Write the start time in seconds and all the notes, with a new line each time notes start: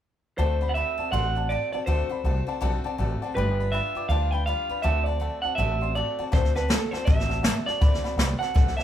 0.38 D2 D3 A3 C4 F#4 A4 C5 D5 F#5 A5
0.61 C4 F#4 A4 D5 F#5 B5
0.69 F#5
0.74 A3 C4 F#4 A4 D5 E5 F#5 B5
0.98 C4 F#4 A4 D5 F#5 A5, muted upright bass stroke
1.12 A1 D3 A3 C4 F#4 A4 D5 F#5 C6
1.35 C4 F#4 A4 D5 F#5 A5
1.49 A3 C4 F#4 A4 D5 F#5 A5
1.72 C4 F#4 A4 D5 F#5 A5, muted upright bass stroke
1.86 D2 D3 A3 C4 F#4 A4 C5 D5 F#5 A5
2.09 C4 F#4 A4 D5 F#5 B5
2.24 C2 A3 C4 F#4 A4 D5 F#5 A5
2.47 C4 F#4 A4 D5 F#5 A5
2.61 B1 D3 A3 C4 F#4 A4 D5 F#5 A5
2.84 C4 F#4 A4 D5 F#5 A5
2.98 A1 A3 C4 F#4 A4 D5 F#5 A5
3.21 C4 F#4 A4 D5 F#5 A5, muted upright bass stroke
3.35 G1 G3 D4 F4 B4 D5 G5 B5
3.59 D4 F4 B4 D5 G5 B5
3.72 G3 D4 F4 B4 D5 E5 G5 B5
3.95 D4 F4 B4 D5 G5 D6, muted upright bass stroke
4.09 D2 G3 D4 F4 B4 D5 F5 G5 A5
4.31 D4 F4 B4 D5 G5 B5
4.46 G3 D4 F4 B4 D5 F5 G5 B5
4.69 D4 F4 B4 D5 G5 B5, muted upright bass stroke
4.82 D2 D3 A3 C4 F#4 A4 D5 E5 F#5 A5
5.04 A4 D5 F#5
5.08 C4 A5
5.20 A3 C4 F#4 A4 D5 F#5 A5
5.42 F#4 A4 D5 F#5 A5, muted upright bass stroke
5.46 C4
5.55 A1 D3 A3 C4 D5 E5 F#5 A5
5.59 F#4 A4
5.81 C4 F#4 A4 D5 F#5 C6
5.95 A3 C4 F#4 A4 D5 F#5 A5
6.19 C4 F#4 A4 D5 F#5 A5, muted upright bass stroke
6.31 D2 D3 A3 C4 F#4 A4 C5 D5 F#5 A5, kick, snare
6.45 snare
6.55 C4 F#4 A4 B4 D5 F#5 A5, snare
6.68 A3 C4 F#4 A4 D5 F#5 A5, snare, hi-hat pedal
6.91 C4 F#4 A4 C5 D5 F#5 A5, muted upright bass stroke, snare
7.05 A1 D3 A3 C4 F#4 A4 E5 F#5, kick, snare
7.20 snare
7.29 C4 F#4 A4 D5 F#5 A5, snare
7.43 A3 C4 F#4 A4 D5 F#5 A5, snare, hi-hat pedal
7.66 C4 F#4 A4 D5 F#5 A5, muted upright bass stroke, snare
7.81 D2 D3 A3 C4 F#4 A4 D5 F#5 B5, kick, snare
7.94 snare
8.04 C4 F#4 A4 D5 F#5 B5, muted upright bass stroke, snare
8.16 C2 A3 C4 F#4 A4 D5 F#5 B5, snare, hi-hat pedal
8.39 C4 F#4 A4 D5 F#5 A5, muted upright bass stroke, snare
8.54 B1 D3 A3 C4 F#4 A4 D5 A5, kick, snare
8.68 snare
8.77 C4 F#4 A4 D5 E5 F#5 A5, muted upright bass stroke, snare